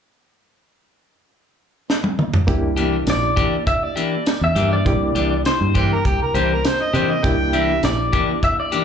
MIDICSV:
0, 0, Header, 1, 7, 480
1, 0, Start_track
1, 0, Tempo, 594059
1, 82, Time_signature, 4, 2, 24, 8
1, 7146, End_track
2, 0, Start_track
2, 0, Title_t, "Clean electric guitar"
2, 0, Program_c, 0, 27
2, 2503, Note_on_c, 0, 74, 81
2, 2959, Note_off_c, 0, 74, 0
2, 2967, Note_on_c, 0, 76, 78
2, 3095, Note_off_c, 0, 76, 0
2, 3095, Note_on_c, 0, 74, 73
2, 3557, Note_off_c, 0, 74, 0
2, 3585, Note_on_c, 0, 76, 77
2, 3810, Note_off_c, 0, 76, 0
2, 3820, Note_on_c, 0, 74, 84
2, 4392, Note_off_c, 0, 74, 0
2, 4412, Note_on_c, 0, 72, 80
2, 4641, Note_off_c, 0, 72, 0
2, 6340, Note_on_c, 0, 74, 86
2, 6798, Note_off_c, 0, 74, 0
2, 6819, Note_on_c, 0, 76, 76
2, 6932, Note_off_c, 0, 76, 0
2, 6946, Note_on_c, 0, 74, 85
2, 7146, Note_off_c, 0, 74, 0
2, 7146, End_track
3, 0, Start_track
3, 0, Title_t, "Harmonica"
3, 0, Program_c, 1, 22
3, 4665, Note_on_c, 1, 67, 79
3, 4771, Note_off_c, 1, 67, 0
3, 4791, Note_on_c, 1, 70, 80
3, 4894, Note_on_c, 1, 67, 85
3, 4906, Note_off_c, 1, 70, 0
3, 5005, Note_off_c, 1, 67, 0
3, 5029, Note_on_c, 1, 70, 74
3, 5143, Note_on_c, 1, 72, 69
3, 5156, Note_off_c, 1, 70, 0
3, 5250, Note_off_c, 1, 72, 0
3, 5278, Note_on_c, 1, 70, 69
3, 5393, Note_on_c, 1, 72, 75
3, 5405, Note_off_c, 1, 70, 0
3, 5514, Note_on_c, 1, 75, 78
3, 5526, Note_off_c, 1, 72, 0
3, 5627, Note_on_c, 1, 72, 70
3, 5639, Note_off_c, 1, 75, 0
3, 5748, Note_on_c, 1, 75, 76
3, 5760, Note_off_c, 1, 72, 0
3, 5859, Note_on_c, 1, 79, 85
3, 5871, Note_off_c, 1, 75, 0
3, 6102, Note_on_c, 1, 76, 91
3, 6114, Note_off_c, 1, 79, 0
3, 6326, Note_off_c, 1, 76, 0
3, 7146, End_track
4, 0, Start_track
4, 0, Title_t, "Reed electric piano"
4, 0, Program_c, 2, 4
4, 1996, Note_on_c, 2, 58, 67
4, 2003, Note_on_c, 2, 62, 65
4, 2011, Note_on_c, 2, 64, 62
4, 2011, Note_on_c, 2, 67, 76
4, 3888, Note_off_c, 2, 58, 0
4, 3892, Note_off_c, 2, 62, 0
4, 3896, Note_off_c, 2, 64, 0
4, 3896, Note_off_c, 2, 67, 0
4, 3922, Note_on_c, 2, 58, 58
4, 3924, Note_on_c, 2, 62, 54
4, 3928, Note_on_c, 2, 64, 54
4, 3936, Note_on_c, 2, 67, 62
4, 5810, Note_off_c, 2, 58, 0
4, 5811, Note_off_c, 2, 62, 0
4, 5814, Note_off_c, 2, 64, 0
4, 5818, Note_off_c, 2, 67, 0
4, 5842, Note_on_c, 2, 58, 71
4, 5847, Note_on_c, 2, 62, 65
4, 5854, Note_on_c, 2, 64, 67
4, 5854, Note_on_c, 2, 67, 78
4, 7146, Note_off_c, 2, 58, 0
4, 7146, Note_off_c, 2, 62, 0
4, 7146, Note_off_c, 2, 64, 0
4, 7146, Note_off_c, 2, 67, 0
4, 7146, End_track
5, 0, Start_track
5, 0, Title_t, "Clean electric guitar"
5, 0, Program_c, 3, 27
5, 2235, Note_on_c, 3, 67, 69
5, 2240, Note_on_c, 3, 62, 66
5, 2248, Note_on_c, 3, 58, 62
5, 2249, Note_on_c, 3, 52, 58
5, 2387, Note_off_c, 3, 67, 0
5, 2389, Note_off_c, 3, 62, 0
5, 2393, Note_off_c, 3, 58, 0
5, 2394, Note_off_c, 3, 52, 0
5, 2718, Note_on_c, 3, 67, 63
5, 2724, Note_on_c, 3, 62, 58
5, 2729, Note_on_c, 3, 58, 52
5, 2732, Note_on_c, 3, 52, 48
5, 2869, Note_off_c, 3, 67, 0
5, 2871, Note_off_c, 3, 62, 0
5, 2874, Note_off_c, 3, 58, 0
5, 2875, Note_off_c, 3, 52, 0
5, 3198, Note_on_c, 3, 67, 63
5, 3203, Note_on_c, 3, 62, 56
5, 3208, Note_on_c, 3, 58, 56
5, 3211, Note_on_c, 3, 52, 55
5, 3348, Note_off_c, 3, 67, 0
5, 3351, Note_off_c, 3, 62, 0
5, 3353, Note_off_c, 3, 58, 0
5, 3355, Note_off_c, 3, 52, 0
5, 3682, Note_on_c, 3, 67, 67
5, 3689, Note_on_c, 3, 62, 60
5, 3695, Note_on_c, 3, 52, 56
5, 3695, Note_on_c, 3, 58, 55
5, 3830, Note_off_c, 3, 67, 0
5, 3834, Note_off_c, 3, 62, 0
5, 3837, Note_off_c, 3, 52, 0
5, 3837, Note_off_c, 3, 58, 0
5, 4163, Note_on_c, 3, 67, 63
5, 4170, Note_on_c, 3, 62, 56
5, 4174, Note_on_c, 3, 58, 52
5, 4178, Note_on_c, 3, 52, 52
5, 4311, Note_off_c, 3, 67, 0
5, 4315, Note_off_c, 3, 62, 0
5, 4317, Note_off_c, 3, 58, 0
5, 4318, Note_off_c, 3, 52, 0
5, 4643, Note_on_c, 3, 67, 66
5, 4653, Note_on_c, 3, 62, 58
5, 4657, Note_on_c, 3, 58, 53
5, 4661, Note_on_c, 3, 52, 50
5, 4791, Note_off_c, 3, 67, 0
5, 4796, Note_off_c, 3, 62, 0
5, 4798, Note_off_c, 3, 58, 0
5, 4800, Note_off_c, 3, 52, 0
5, 5127, Note_on_c, 3, 67, 74
5, 5134, Note_on_c, 3, 62, 64
5, 5137, Note_on_c, 3, 58, 65
5, 5142, Note_on_c, 3, 52, 61
5, 5273, Note_off_c, 3, 67, 0
5, 5276, Note_off_c, 3, 62, 0
5, 5278, Note_off_c, 3, 58, 0
5, 5280, Note_off_c, 3, 52, 0
5, 5604, Note_on_c, 3, 67, 68
5, 5607, Note_on_c, 3, 62, 69
5, 5614, Note_on_c, 3, 58, 64
5, 5620, Note_on_c, 3, 52, 58
5, 5751, Note_off_c, 3, 67, 0
5, 5753, Note_off_c, 3, 62, 0
5, 5756, Note_off_c, 3, 58, 0
5, 5759, Note_off_c, 3, 52, 0
5, 6086, Note_on_c, 3, 67, 70
5, 6090, Note_on_c, 3, 62, 67
5, 6097, Note_on_c, 3, 58, 63
5, 6102, Note_on_c, 3, 52, 59
5, 6232, Note_off_c, 3, 67, 0
5, 6234, Note_off_c, 3, 62, 0
5, 6238, Note_off_c, 3, 58, 0
5, 6240, Note_off_c, 3, 52, 0
5, 6566, Note_on_c, 3, 67, 62
5, 6572, Note_on_c, 3, 62, 59
5, 6580, Note_on_c, 3, 58, 58
5, 6582, Note_on_c, 3, 52, 50
5, 6712, Note_off_c, 3, 67, 0
5, 6715, Note_off_c, 3, 62, 0
5, 6719, Note_off_c, 3, 58, 0
5, 6720, Note_off_c, 3, 52, 0
5, 7046, Note_on_c, 3, 67, 69
5, 7052, Note_on_c, 3, 62, 61
5, 7055, Note_on_c, 3, 58, 59
5, 7063, Note_on_c, 3, 52, 60
5, 7146, Note_off_c, 3, 52, 0
5, 7146, Note_off_c, 3, 58, 0
5, 7146, Note_off_c, 3, 62, 0
5, 7146, Note_off_c, 3, 67, 0
5, 7146, End_track
6, 0, Start_track
6, 0, Title_t, "Fingered electric bass"
6, 0, Program_c, 4, 33
6, 2002, Note_on_c, 4, 36, 87
6, 2451, Note_off_c, 4, 36, 0
6, 2479, Note_on_c, 4, 34, 86
6, 2706, Note_off_c, 4, 34, 0
6, 3566, Note_on_c, 4, 40, 80
6, 3675, Note_off_c, 4, 40, 0
6, 3680, Note_on_c, 4, 43, 96
6, 3926, Note_on_c, 4, 36, 94
6, 3938, Note_off_c, 4, 43, 0
6, 4149, Note_off_c, 4, 36, 0
6, 4159, Note_on_c, 4, 36, 82
6, 4386, Note_off_c, 4, 36, 0
6, 4531, Note_on_c, 4, 43, 83
6, 4862, Note_off_c, 4, 43, 0
6, 4889, Note_on_c, 4, 36, 85
6, 5003, Note_off_c, 4, 36, 0
6, 5124, Note_on_c, 4, 36, 80
6, 5348, Note_off_c, 4, 36, 0
6, 5603, Note_on_c, 4, 48, 87
6, 5828, Note_off_c, 4, 48, 0
6, 5852, Note_on_c, 4, 36, 90
6, 6296, Note_off_c, 4, 36, 0
6, 6329, Note_on_c, 4, 34, 88
6, 6550, Note_off_c, 4, 34, 0
6, 7146, End_track
7, 0, Start_track
7, 0, Title_t, "Drums"
7, 1533, Note_on_c, 9, 38, 69
7, 1614, Note_off_c, 9, 38, 0
7, 1647, Note_on_c, 9, 48, 74
7, 1728, Note_off_c, 9, 48, 0
7, 1768, Note_on_c, 9, 47, 80
7, 1849, Note_off_c, 9, 47, 0
7, 1887, Note_on_c, 9, 43, 94
7, 1968, Note_off_c, 9, 43, 0
7, 2001, Note_on_c, 9, 42, 77
7, 2003, Note_on_c, 9, 36, 100
7, 2082, Note_off_c, 9, 42, 0
7, 2084, Note_off_c, 9, 36, 0
7, 2239, Note_on_c, 9, 42, 59
7, 2320, Note_off_c, 9, 42, 0
7, 2478, Note_on_c, 9, 42, 78
7, 2478, Note_on_c, 9, 54, 97
7, 2485, Note_on_c, 9, 38, 100
7, 2559, Note_off_c, 9, 42, 0
7, 2559, Note_off_c, 9, 54, 0
7, 2565, Note_off_c, 9, 38, 0
7, 2723, Note_on_c, 9, 42, 62
7, 2724, Note_on_c, 9, 36, 81
7, 2804, Note_off_c, 9, 42, 0
7, 2805, Note_off_c, 9, 36, 0
7, 2963, Note_on_c, 9, 42, 84
7, 2964, Note_on_c, 9, 36, 83
7, 3044, Note_off_c, 9, 42, 0
7, 3045, Note_off_c, 9, 36, 0
7, 3206, Note_on_c, 9, 42, 63
7, 3286, Note_off_c, 9, 42, 0
7, 3445, Note_on_c, 9, 42, 82
7, 3445, Note_on_c, 9, 54, 106
7, 3451, Note_on_c, 9, 38, 113
7, 3526, Note_off_c, 9, 42, 0
7, 3526, Note_off_c, 9, 54, 0
7, 3532, Note_off_c, 9, 38, 0
7, 3684, Note_on_c, 9, 42, 60
7, 3765, Note_off_c, 9, 42, 0
7, 3926, Note_on_c, 9, 36, 104
7, 3926, Note_on_c, 9, 42, 75
7, 4007, Note_off_c, 9, 36, 0
7, 4007, Note_off_c, 9, 42, 0
7, 4165, Note_on_c, 9, 42, 61
7, 4246, Note_off_c, 9, 42, 0
7, 4405, Note_on_c, 9, 42, 73
7, 4405, Note_on_c, 9, 54, 103
7, 4412, Note_on_c, 9, 38, 95
7, 4486, Note_off_c, 9, 42, 0
7, 4486, Note_off_c, 9, 54, 0
7, 4493, Note_off_c, 9, 38, 0
7, 4645, Note_on_c, 9, 42, 57
7, 4649, Note_on_c, 9, 36, 80
7, 4726, Note_off_c, 9, 42, 0
7, 4729, Note_off_c, 9, 36, 0
7, 4889, Note_on_c, 9, 36, 77
7, 4890, Note_on_c, 9, 42, 76
7, 4970, Note_off_c, 9, 36, 0
7, 4970, Note_off_c, 9, 42, 0
7, 5130, Note_on_c, 9, 42, 51
7, 5211, Note_off_c, 9, 42, 0
7, 5369, Note_on_c, 9, 42, 76
7, 5369, Note_on_c, 9, 54, 103
7, 5376, Note_on_c, 9, 38, 112
7, 5450, Note_off_c, 9, 42, 0
7, 5450, Note_off_c, 9, 54, 0
7, 5457, Note_off_c, 9, 38, 0
7, 5611, Note_on_c, 9, 42, 53
7, 5692, Note_off_c, 9, 42, 0
7, 5850, Note_on_c, 9, 42, 75
7, 5851, Note_on_c, 9, 36, 104
7, 5931, Note_off_c, 9, 36, 0
7, 5931, Note_off_c, 9, 42, 0
7, 6085, Note_on_c, 9, 42, 58
7, 6166, Note_off_c, 9, 42, 0
7, 6325, Note_on_c, 9, 42, 71
7, 6325, Note_on_c, 9, 54, 106
7, 6332, Note_on_c, 9, 38, 95
7, 6406, Note_off_c, 9, 42, 0
7, 6406, Note_off_c, 9, 54, 0
7, 6413, Note_off_c, 9, 38, 0
7, 6571, Note_on_c, 9, 36, 78
7, 6572, Note_on_c, 9, 42, 59
7, 6651, Note_off_c, 9, 36, 0
7, 6652, Note_off_c, 9, 42, 0
7, 6808, Note_on_c, 9, 42, 81
7, 6810, Note_on_c, 9, 36, 79
7, 6889, Note_off_c, 9, 42, 0
7, 6891, Note_off_c, 9, 36, 0
7, 7046, Note_on_c, 9, 42, 61
7, 7127, Note_off_c, 9, 42, 0
7, 7146, End_track
0, 0, End_of_file